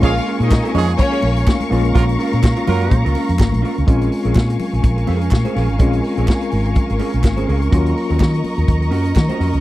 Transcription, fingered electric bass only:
X:1
M:4/4
L:1/16
Q:"Swing 16ths" 1/4=125
K:Bbm
V:1 name="Fingered electric bass" clef=bass
B,,,2 z B,,2 z F,,2 z2 B,,,2 z2 B,,,2 | B,,,2 z B,,2 z G,,2 B,, D,, z F,, A,,, B,,, z D,, | B,,,2 z B,,, B,,2 z B,,, B,,,2 F,,2 B,, z B,,, A,,, | B,,,2 z B,,, z2 A,,,2 z A,,, z B,,, A,,,2 D,,2 |
E,,2 z E,, E,2 z E,, E,,2 G,,2 E, z F,, D,, |]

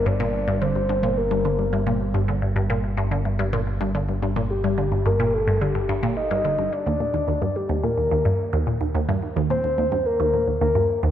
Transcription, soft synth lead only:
X:1
M:4/4
L:1/16
Q:1/4=108
K:Eblyd
V:1 name="Soft synth lead"
d4 c4 B6 z2 | z16 | G4 B2 A2 G4 e4 | d6 G2 B6 z2 |
z4 c4 B4 B3 z |]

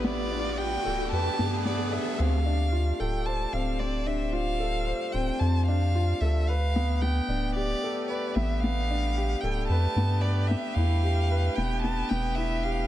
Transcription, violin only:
X:1
M:4/4
L:1/8
Q:1/4=112
K:Ddor
V:1 name="Violin"
d2 g2 a2 d e | f3 g a f d e | f3 g a f2 e | f2 g2 d2 d e |
f3 g a2 d e | f3 g a g e f |]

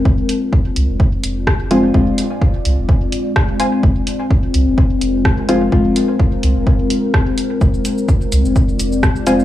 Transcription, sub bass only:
X:1
M:4/4
L:1/16
Q:"Swing 16ths" 1/4=127
K:Fdor
V:1 name="Sub bass" clef=bass
F,,, z4 z C,, F,,,3 F,,,6 | F,,, z4 z C,, F,,,3 z6 | F,,, z4 z C,, F,,,3 F,,,6 | F,,, z4 z C,, F,,,3 z6 |
F,,, z4 z C,, F,,,3 F,,,6 |]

